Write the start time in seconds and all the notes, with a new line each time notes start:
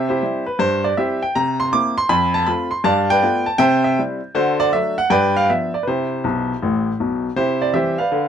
Already playing: C3 G4 C5 E5
0.09 E4 G4 C5
0.23 G3 C4 E4
0.46 B4
0.59 G2 C5
0.84 D5
0.97 G3 C4 E4 G4 C5 E5
1.23 G5
1.35 C3 A#5
1.60 C6
1.72 A#3 C4 E4 D6
1.98 C6
2.09 F2 B5
2.34 A5
2.46 A3 C4 F4 B5
2.71 C6
2.84 G2 D5 F5 A5
3.10 B4 D5 G5
3.22 A3 B3 F4
3.46 A5
3.58 C3 C5 E5 G5
3.84 E5
3.99 G3 C4 E4
4.35 D3 F#4 A4 C5
4.60 D5
4.73 F#3 A3 D4 E5
4.98 F#5
5.10 G2 B4 D5 G5
5.36 F5
5.50 F3 B3 D4 E5
5.74 D5
5.83 B4
5.87 C3 E4 G4 C5
6.24 B1 B2
6.63 A1 A2
7.00 B1 B2
7.36 C3 E4 G4 C5
7.62 D5
7.74 E3 G3 C4 G4 C5 E5
7.98 B4 D5 F5
8.12 D3